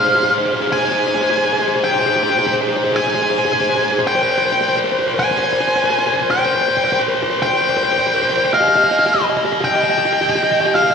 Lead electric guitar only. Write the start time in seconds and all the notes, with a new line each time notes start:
Already playing: F5
0.72 G#5
1.84 G5
2.96 G#5
4.07 G5
5.19 G#5
6.31 G5
7.43 G5
8.54 F5
9.64 G5
10.75 F5